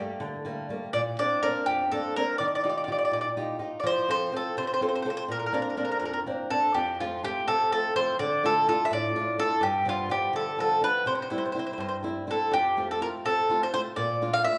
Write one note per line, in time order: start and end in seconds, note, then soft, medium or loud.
0.00 0.36 G3 medium
0.00 0.36 A3 soft
0.00 0.37 A#3 soft
0.20 0.68 D3 medium
0.45 0.68 G3 soft
0.45 0.69 A3 soft
0.45 0.69 A#3 medium
0.69 0.89 G3 soft
0.69 0.89 A3 soft
0.69 0.89 A#3 medium
0.93 1.19 A#2 medium
0.93 1.00 D5 loud
1.19 1.41 A#3 soft
1.19 1.41 C4 soft
1.19 1.42 D4 medium
1.19 1.42 D5 medium
1.42 1.67 A#3 soft
1.42 1.82 C4 soft
1.42 1.83 D4 medium
1.42 1.65 A#4 medium
1.66 1.92 F2 medium
1.66 1.90 G4 medium
1.92 2.16 A#3 medium
1.92 2.16 C4 soft
1.92 2.17 D4 soft
1.92 2.16 A4 medium
2.16 2.36 A#3 soft
2.16 2.36 C4 soft
2.16 2.36 D4 soft
2.16 2.38 A#4 medium
2.38 2.87 D#3 medium
2.38 2.46 D5 medium
2.48 2.54 D5 soft
2.55 2.62 D5 medium
2.64 2.86 D#4 soft
2.64 2.87 F4 soft
2.64 2.87 G4 medium
2.64 2.68 D5 soft
2.69 2.77 D5 medium
2.78 2.83 D5 soft
2.84 3.27 D#4 soft
2.84 2.91 D5 medium
2.88 3.27 F4 medium
2.88 3.27 G4 medium
2.88 2.97 D5 medium
2.99 3.04 D5 medium
3.05 3.12 D5 medium
3.11 3.59 A#2 medium
3.11 3.20 D5 medium
3.21 3.28 D5 medium
3.37 3.58 D#4 medium
3.37 3.58 F4 medium
3.37 3.59 G4 medium
3.59 3.79 D#4 soft
3.59 3.79 F4 soft
3.59 3.79 G4 soft
3.80 4.31 F3 medium
3.80 3.85 D5 medium
3.87 4.09 C5 loud
4.08 4.31 C4 medium
4.08 4.32 F4 soft
4.08 4.32 A4 medium
4.08 4.32 C5 loud
4.32 4.71 C4 medium
4.32 4.72 F4 soft
4.32 4.72 A4 medium
4.37 4.57 A4 medium
4.57 5.04 C3 medium
4.57 4.64 C5 medium
4.67 4.72 C5 medium
4.74 4.80 C5 medium
4.81 5.04 C4 medium
4.81 5.04 F4 soft
4.81 5.05 A4 medium
4.81 4.87 C5 medium
4.89 4.94 C5 medium
4.95 5.01 C5 medium
5.02 5.24 C4 soft
5.02 5.24 F4 soft
5.02 5.25 A4 medium
5.02 5.08 C5 medium
5.10 5.16 C5 medium
5.17 5.23 C5 medium
5.28 5.52 A#2 medium
5.28 5.37 A#4 medium
5.39 5.45 A#4 soft
5.46 5.52 A#4 medium
5.53 5.76 A#3 medium
5.53 5.76 C4 soft
5.53 5.76 D4 medium
5.53 5.60 A#4 medium
5.62 5.67 A#4 medium
5.70 5.75 A#4 soft
5.77 6.00 A#3 medium
5.77 6.17 C4 soft
5.77 6.17 D4 soft
5.77 5.82 A#4 soft
5.85 5.90 A#4 medium
5.92 5.97 A#4 medium
5.99 6.26 F2 medium
5.99 6.04 A#4 medium
6.05 6.11 A#4 medium
6.13 6.19 A#4 soft
6.26 6.49 A#3 soft
6.26 6.50 C4 medium
6.26 6.50 D4 medium
6.50 6.70 A#3 soft
6.50 6.70 C4 soft
6.50 6.70 D4 soft
6.50 6.73 A4 medium
6.74 7.22 F2 medium
6.74 6.98 G4 medium
7.00 7.22 F3 medium
7.00 7.23 A3 soft
7.00 7.23 C4 medium
7.00 7.24 F4 medium
7.23 7.63 F3 soft
7.23 7.63 A3 soft
7.23 7.63 C4 medium
7.23 7.48 G4 medium
7.48 7.95 C3 medium
7.48 7.71 A4 loud
7.72 7.95 F3 soft
7.72 7.95 A3 soft
7.72 7.96 C4 medium
7.72 7.94 A4 medium
7.96 8.15 F3 medium
7.96 8.15 A3 soft
7.96 8.15 C4 medium
7.96 8.18 C5 loud
8.19 8.67 D3 medium
8.19 8.45 D5 medium
8.43 8.67 A3 medium
8.43 8.67 D4 soft
8.43 8.67 F4 medium
8.43 8.67 A4 loud
8.68 9.07 A3 soft
8.68 9.07 D4 soft
8.68 9.07 F4 medium
8.68 8.84 A4 medium
8.85 8.92 E5 medium
8.91 9.38 A2 medium
8.91 9.37 D5 medium
9.15 9.37 A3 soft
9.15 9.38 D4 soft
9.15 9.38 F4 medium
9.38 9.58 A3 soft
9.38 9.58 D4 soft
9.38 9.58 F4 medium
9.38 9.61 A4 loud
9.61 10.09 G2 medium
9.61 9.86 G4 medium
9.85 10.08 F3 medium
9.85 10.08 G3 medium
9.85 10.09 B3 medium
9.85 10.10 F4 medium
10.09 10.49 F3 medium
10.09 10.49 G3 soft
10.09 10.49 B3 medium
10.09 10.33 G4 medium
10.33 10.81 D3 medium
10.33 10.58 A4 medium
10.58 10.80 F3 medium
10.58 10.80 G3 soft
10.58 10.81 B3 medium
10.58 10.82 A4 medium
10.81 11.01 F3 soft
10.81 11.01 G3 soft
10.81 11.02 B3 soft
10.81 11.06 B4 loud
11.06 11.54 C3 medium
11.06 11.14 C5 medium
11.15 11.21 C5 medium
11.22 11.29 C5 medium
11.30 11.53 G3 medium
11.30 11.54 C4 medium
11.30 11.54 E4 medium
11.30 11.37 C5 medium
11.38 11.44 C5 medium
11.46 11.51 C5 soft
11.52 11.94 G3 soft
11.52 11.94 C4 soft
11.52 11.95 E4 medium
11.52 11.58 C5 medium
11.59 11.65 C5 medium
11.67 11.72 C5 medium
11.73 11.79 C5 medium
11.78 12.26 G2 medium
11.78 11.87 C5 medium
11.89 11.95 C5 medium
12.03 12.26 G3 soft
12.03 12.26 C4 soft
12.03 12.26 E4 medium
12.27 12.47 G3 soft
12.27 12.47 C4 soft
12.27 12.47 E4 soft
12.27 12.52 A4 medium
12.51 12.99 F2 medium
12.51 12.87 G4 medium
12.77 12.99 A3 soft
12.77 13.00 C4 soft
12.77 13.00 F4 soft
12.91 13.01 A4 medium
13.01 13.40 A3 soft
13.01 13.40 C4 soft
13.01 13.40 F4 medium
13.01 13.08 A#4 medium
13.25 13.72 C3 medium
13.25 13.63 A4 loud
13.49 13.72 A3 soft
13.49 13.72 C4 soft
13.49 13.73 F4 medium
13.63 13.73 C5 medium
13.73 13.92 A3 soft
13.73 13.92 C4 soft
13.73 13.93 F4 soft
13.73 13.80 C5 loud
13.96 14.44 A#2 medium
13.96 14.35 D5 medium
14.22 14.45 A#3 soft
14.22 14.45 D4 soft
14.22 14.45 F4 medium
14.33 14.44 F5 loud
14.44 14.58 A#3 soft
14.44 14.58 D4 soft
14.44 14.58 F4 medium
14.44 14.58 E5 loud